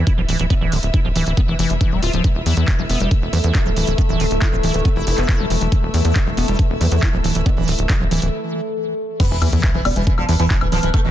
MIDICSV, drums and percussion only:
0, 0, Header, 1, 2, 480
1, 0, Start_track
1, 0, Tempo, 434783
1, 556, Time_signature, 4, 2, 24, 8
1, 12264, End_track
2, 0, Start_track
2, 0, Title_t, "Drums"
2, 76, Note_on_c, 9, 36, 124
2, 76, Note_on_c, 9, 42, 65
2, 186, Note_off_c, 9, 36, 0
2, 186, Note_off_c, 9, 42, 0
2, 316, Note_on_c, 9, 46, 95
2, 426, Note_off_c, 9, 46, 0
2, 436, Note_on_c, 9, 42, 63
2, 546, Note_off_c, 9, 42, 0
2, 556, Note_on_c, 9, 36, 120
2, 556, Note_on_c, 9, 42, 65
2, 666, Note_off_c, 9, 36, 0
2, 666, Note_off_c, 9, 42, 0
2, 796, Note_on_c, 9, 46, 110
2, 906, Note_off_c, 9, 46, 0
2, 916, Note_on_c, 9, 42, 62
2, 1026, Note_off_c, 9, 42, 0
2, 1036, Note_on_c, 9, 36, 127
2, 1036, Note_on_c, 9, 42, 64
2, 1146, Note_off_c, 9, 36, 0
2, 1147, Note_off_c, 9, 42, 0
2, 1276, Note_on_c, 9, 46, 96
2, 1386, Note_off_c, 9, 46, 0
2, 1396, Note_on_c, 9, 42, 59
2, 1507, Note_off_c, 9, 42, 0
2, 1516, Note_on_c, 9, 36, 120
2, 1516, Note_on_c, 9, 42, 61
2, 1626, Note_off_c, 9, 36, 0
2, 1627, Note_off_c, 9, 42, 0
2, 1756, Note_on_c, 9, 46, 108
2, 1867, Note_off_c, 9, 46, 0
2, 1876, Note_on_c, 9, 42, 62
2, 1987, Note_off_c, 9, 42, 0
2, 1996, Note_on_c, 9, 36, 122
2, 1996, Note_on_c, 9, 42, 65
2, 2106, Note_off_c, 9, 36, 0
2, 2107, Note_off_c, 9, 42, 0
2, 2236, Note_on_c, 9, 46, 91
2, 2346, Note_off_c, 9, 46, 0
2, 2356, Note_on_c, 9, 42, 63
2, 2467, Note_off_c, 9, 42, 0
2, 2476, Note_on_c, 9, 36, 118
2, 2476, Note_on_c, 9, 42, 64
2, 2587, Note_off_c, 9, 36, 0
2, 2587, Note_off_c, 9, 42, 0
2, 2716, Note_on_c, 9, 46, 110
2, 2827, Note_off_c, 9, 46, 0
2, 2837, Note_on_c, 9, 42, 63
2, 2947, Note_off_c, 9, 42, 0
2, 2956, Note_on_c, 9, 36, 122
2, 2957, Note_on_c, 9, 39, 112
2, 2957, Note_on_c, 9, 42, 66
2, 3067, Note_off_c, 9, 36, 0
2, 3067, Note_off_c, 9, 39, 0
2, 3067, Note_off_c, 9, 42, 0
2, 3196, Note_on_c, 9, 46, 92
2, 3307, Note_off_c, 9, 46, 0
2, 3317, Note_on_c, 9, 42, 60
2, 3427, Note_off_c, 9, 42, 0
2, 3436, Note_on_c, 9, 36, 113
2, 3437, Note_on_c, 9, 42, 60
2, 3547, Note_off_c, 9, 36, 0
2, 3547, Note_off_c, 9, 42, 0
2, 3677, Note_on_c, 9, 46, 106
2, 3787, Note_off_c, 9, 46, 0
2, 3796, Note_on_c, 9, 42, 62
2, 3907, Note_off_c, 9, 42, 0
2, 3916, Note_on_c, 9, 36, 120
2, 3917, Note_on_c, 9, 39, 117
2, 3917, Note_on_c, 9, 42, 65
2, 4027, Note_off_c, 9, 36, 0
2, 4027, Note_off_c, 9, 39, 0
2, 4027, Note_off_c, 9, 42, 0
2, 4157, Note_on_c, 9, 46, 90
2, 4267, Note_off_c, 9, 46, 0
2, 4277, Note_on_c, 9, 42, 64
2, 4387, Note_off_c, 9, 42, 0
2, 4396, Note_on_c, 9, 36, 115
2, 4397, Note_on_c, 9, 42, 67
2, 4507, Note_off_c, 9, 36, 0
2, 4507, Note_off_c, 9, 42, 0
2, 4636, Note_on_c, 9, 46, 103
2, 4747, Note_off_c, 9, 46, 0
2, 4757, Note_on_c, 9, 42, 65
2, 4867, Note_off_c, 9, 42, 0
2, 4876, Note_on_c, 9, 36, 116
2, 4877, Note_on_c, 9, 39, 116
2, 4877, Note_on_c, 9, 42, 65
2, 4987, Note_off_c, 9, 36, 0
2, 4987, Note_off_c, 9, 39, 0
2, 4987, Note_off_c, 9, 42, 0
2, 5117, Note_on_c, 9, 46, 91
2, 5227, Note_off_c, 9, 46, 0
2, 5236, Note_on_c, 9, 42, 63
2, 5347, Note_off_c, 9, 42, 0
2, 5356, Note_on_c, 9, 36, 110
2, 5356, Note_on_c, 9, 42, 64
2, 5467, Note_off_c, 9, 36, 0
2, 5467, Note_off_c, 9, 42, 0
2, 5596, Note_on_c, 9, 46, 106
2, 5706, Note_off_c, 9, 46, 0
2, 5716, Note_on_c, 9, 39, 35
2, 5716, Note_on_c, 9, 42, 62
2, 5827, Note_off_c, 9, 39, 0
2, 5827, Note_off_c, 9, 42, 0
2, 5836, Note_on_c, 9, 36, 118
2, 5836, Note_on_c, 9, 39, 117
2, 5836, Note_on_c, 9, 42, 67
2, 5946, Note_off_c, 9, 39, 0
2, 5946, Note_off_c, 9, 42, 0
2, 5947, Note_off_c, 9, 36, 0
2, 6076, Note_on_c, 9, 46, 91
2, 6186, Note_off_c, 9, 46, 0
2, 6196, Note_on_c, 9, 42, 63
2, 6306, Note_off_c, 9, 42, 0
2, 6316, Note_on_c, 9, 36, 119
2, 6316, Note_on_c, 9, 42, 71
2, 6426, Note_off_c, 9, 36, 0
2, 6426, Note_off_c, 9, 42, 0
2, 6556, Note_on_c, 9, 46, 103
2, 6666, Note_off_c, 9, 46, 0
2, 6676, Note_on_c, 9, 42, 70
2, 6786, Note_off_c, 9, 42, 0
2, 6796, Note_on_c, 9, 36, 119
2, 6796, Note_on_c, 9, 39, 120
2, 6796, Note_on_c, 9, 42, 69
2, 6906, Note_off_c, 9, 39, 0
2, 6906, Note_off_c, 9, 42, 0
2, 6907, Note_off_c, 9, 36, 0
2, 7036, Note_on_c, 9, 46, 86
2, 7146, Note_off_c, 9, 46, 0
2, 7156, Note_on_c, 9, 42, 66
2, 7266, Note_off_c, 9, 42, 0
2, 7276, Note_on_c, 9, 36, 115
2, 7276, Note_on_c, 9, 42, 66
2, 7386, Note_off_c, 9, 42, 0
2, 7387, Note_off_c, 9, 36, 0
2, 7516, Note_on_c, 9, 46, 101
2, 7626, Note_off_c, 9, 46, 0
2, 7636, Note_on_c, 9, 42, 68
2, 7746, Note_off_c, 9, 42, 0
2, 7756, Note_on_c, 9, 36, 115
2, 7756, Note_on_c, 9, 39, 124
2, 7756, Note_on_c, 9, 42, 72
2, 7866, Note_off_c, 9, 39, 0
2, 7866, Note_off_c, 9, 42, 0
2, 7867, Note_off_c, 9, 36, 0
2, 7996, Note_on_c, 9, 46, 90
2, 8107, Note_off_c, 9, 46, 0
2, 8116, Note_on_c, 9, 42, 69
2, 8227, Note_off_c, 9, 42, 0
2, 8236, Note_on_c, 9, 36, 115
2, 8236, Note_on_c, 9, 42, 73
2, 8347, Note_off_c, 9, 36, 0
2, 8347, Note_off_c, 9, 42, 0
2, 8477, Note_on_c, 9, 46, 110
2, 8587, Note_off_c, 9, 46, 0
2, 8597, Note_on_c, 9, 42, 71
2, 8707, Note_off_c, 9, 42, 0
2, 8716, Note_on_c, 9, 36, 115
2, 8717, Note_on_c, 9, 39, 122
2, 8717, Note_on_c, 9, 42, 67
2, 8827, Note_off_c, 9, 36, 0
2, 8827, Note_off_c, 9, 39, 0
2, 8827, Note_off_c, 9, 42, 0
2, 8957, Note_on_c, 9, 46, 91
2, 9067, Note_off_c, 9, 46, 0
2, 9077, Note_on_c, 9, 42, 69
2, 9187, Note_off_c, 9, 42, 0
2, 10156, Note_on_c, 9, 36, 121
2, 10156, Note_on_c, 9, 42, 72
2, 10156, Note_on_c, 9, 49, 110
2, 10267, Note_off_c, 9, 36, 0
2, 10267, Note_off_c, 9, 42, 0
2, 10267, Note_off_c, 9, 49, 0
2, 10396, Note_on_c, 9, 46, 110
2, 10396, Note_on_c, 9, 76, 39
2, 10507, Note_off_c, 9, 46, 0
2, 10507, Note_off_c, 9, 76, 0
2, 10516, Note_on_c, 9, 42, 70
2, 10627, Note_off_c, 9, 42, 0
2, 10636, Note_on_c, 9, 36, 126
2, 10636, Note_on_c, 9, 39, 127
2, 10636, Note_on_c, 9, 42, 71
2, 10747, Note_off_c, 9, 36, 0
2, 10747, Note_off_c, 9, 39, 0
2, 10747, Note_off_c, 9, 42, 0
2, 10876, Note_on_c, 9, 46, 92
2, 10876, Note_on_c, 9, 76, 76
2, 10987, Note_off_c, 9, 46, 0
2, 10987, Note_off_c, 9, 76, 0
2, 10996, Note_on_c, 9, 42, 69
2, 11107, Note_off_c, 9, 42, 0
2, 11116, Note_on_c, 9, 36, 119
2, 11116, Note_on_c, 9, 42, 67
2, 11227, Note_off_c, 9, 36, 0
2, 11227, Note_off_c, 9, 42, 0
2, 11236, Note_on_c, 9, 76, 38
2, 11347, Note_off_c, 9, 76, 0
2, 11356, Note_on_c, 9, 46, 112
2, 11467, Note_off_c, 9, 46, 0
2, 11476, Note_on_c, 9, 42, 70
2, 11587, Note_off_c, 9, 42, 0
2, 11596, Note_on_c, 9, 36, 123
2, 11596, Note_on_c, 9, 39, 127
2, 11596, Note_on_c, 9, 42, 71
2, 11707, Note_off_c, 9, 36, 0
2, 11707, Note_off_c, 9, 39, 0
2, 11707, Note_off_c, 9, 42, 0
2, 11716, Note_on_c, 9, 76, 82
2, 11827, Note_off_c, 9, 76, 0
2, 11836, Note_on_c, 9, 46, 92
2, 11947, Note_off_c, 9, 46, 0
2, 11957, Note_on_c, 9, 42, 73
2, 12067, Note_off_c, 9, 42, 0
2, 12076, Note_on_c, 9, 36, 127
2, 12077, Note_on_c, 9, 42, 68
2, 12077, Note_on_c, 9, 76, 38
2, 12187, Note_off_c, 9, 36, 0
2, 12187, Note_off_c, 9, 42, 0
2, 12187, Note_off_c, 9, 76, 0
2, 12264, End_track
0, 0, End_of_file